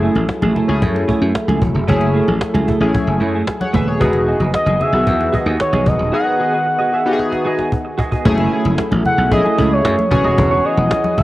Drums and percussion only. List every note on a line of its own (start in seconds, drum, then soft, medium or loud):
0.03 cajon slap soft
0.15 high conga medium
0.29 cajon slap loud
0.42 muted conga soft
0.42 high conga medium
0.56 low conga medium
0.82 cajon bass loud
0.82 muted conga soft
0.82 high conga medium
0.96 muted conga soft
1.09 cajon bass loud
1.09 high conga soft
1.35 cajon slap loud
1.49 muted conga soft
1.49 high conga medium
1.62 cajon bass loud
1.62 high conga medium
1.62 low conga medium
1.88 cajon bass loud
1.88 muted conga soft
1.88 low conga medium
2.01 muted conga soft
2.15 cajon slap soft
2.28 high conga medium
2.41 cajon slap loud
2.55 cajon slap soft
2.55 muted conga soft
2.55 high conga medium
2.68 cajon bass medium
2.68 low conga medium
2.95 cajon bass loud
2.95 muted conga soft
2.95 high conga medium
3.21 cajon slap soft
3.21 high conga soft
3.47 cajon slap loud
3.61 muted conga soft
3.61 high conga medium
3.74 cajon bass medium
3.74 high conga medium
3.74 low conga medium
4.01 cajon bass loud
4.01 low conga medium
4.13 muted conga soft
4.28 cajon slap soft
4.40 high conga medium
4.54 cajon slap loud
4.54 muted conga soft
4.67 cajon slap soft
4.67 muted conga soft
4.67 high conga medium
4.81 low conga medium
5.07 cajon bass loud
5.07 high conga medium
5.21 muted conga soft
5.34 cajon bass medium
5.34 high conga soft
5.60 cajon slap loud
5.73 muted conga soft
5.73 high conga medium
5.86 cajon bass medium
5.86 high conga medium
5.86 low conga medium
7.19 cajon slap medium
7.32 cajon slap medium
7.59 cajon slap medium
7.72 cajon bass medium
7.99 cajon bass loud
8.12 cajon bass medium
8.25 cajon bass loud
8.25 muted conga soft
8.25 low conga medium
8.38 muted conga soft
8.52 cajon slap soft
8.65 high conga medium
8.78 cajon slap loud
8.78 muted conga soft
8.92 cajon slap soft
8.92 muted conga soft
8.92 high conga medium
9.05 low conga medium
9.32 cajon bass loud
9.32 muted conga soft
9.32 high conga medium
9.46 muted conga soft
9.58 cajon bass loud
9.58 high conga soft
9.85 cajon slap loud
9.85 muted conga soft
9.99 high conga medium
10.11 cajon bass loud
10.11 high conga medium
10.11 low conga medium
10.38 cajon bass loud
10.38 muted conga soft
10.38 low conga medium
10.65 cajon slap soft
10.77 high conga medium
10.91 cajon slap loud
10.91 muted conga soft
11.04 cajon slap soft
11.04 high conga medium
11.18 cajon bass medium
11.18 low conga medium